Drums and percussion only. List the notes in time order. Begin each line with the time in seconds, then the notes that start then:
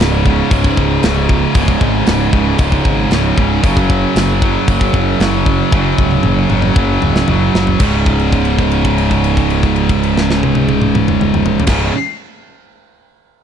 0.00 snare, open hi-hat
0.26 kick
0.51 kick, open hi-hat
0.64 kick
0.77 kick
1.03 snare, open hi-hat
1.29 kick
1.55 kick, open hi-hat
1.68 kick
1.81 kick
2.07 snare, open hi-hat
2.33 kick
2.58 kick, open hi-hat
2.72 kick
2.85 kick
3.11 snare, open hi-hat
3.38 kick
3.64 kick, open hi-hat
3.77 kick
3.90 kick
4.16 snare, open hi-hat
4.42 kick
4.68 kick, open hi-hat
4.81 kick
4.94 kick
5.20 snare, open hi-hat
5.46 kick
5.72 kick
5.98 kick
6.11 high tom
6.23 mid tom
6.50 mid tom
6.62 mid tom
6.76 kick
7.02 mid tom
7.16 snare
7.28 floor tom
7.55 snare
7.67 floor tom
7.80 kick, crash
8.06 kick, crash
8.19 crash
8.32 kick, crash
8.45 crash
8.58 kick, crash
8.71 crash
8.85 kick, crash
8.98 crash
9.11 kick, crash
9.24 crash
9.37 kick, crash
9.50 crash
9.63 kick, crash
9.76 crash
9.89 kick, crash
10.03 crash
10.18 snare
10.31 snare
10.43 high tom
10.55 high tom
10.69 high tom
10.81 mid tom
10.95 mid tom
11.08 mid tom
11.21 mid tom
11.34 mid tom
11.46 floor tom
11.60 floor tom
11.67 kick, snare, crash